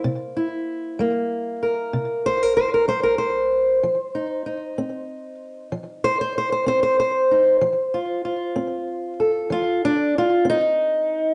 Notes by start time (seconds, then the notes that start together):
Already playing: A#3 C5
0.04 C3
0.37 E4
0.99 G3 A#3
1.63 A#4
1.93 C3
2.26 C5
2.43 A#4
2.57 C5
2.74 A#4
2.88 G3 C5
3.03 A#4
3.18 C5
3.83 F3
4.15 D#4
4.46 D#4
4.78 C4
5.72 F3
6.04 C5
6.21 C5
6.38 C5
6.52 C5
6.66 C4 C5
6.83 C5
7.00 C5
7.31 D#4
7.61 F3
7.94 F4
8.25 F4
8.56 C4
9.20 A4
9.50 F3 F4
9.85 D4
10.18 F4
10.45 C4
10.50 D#4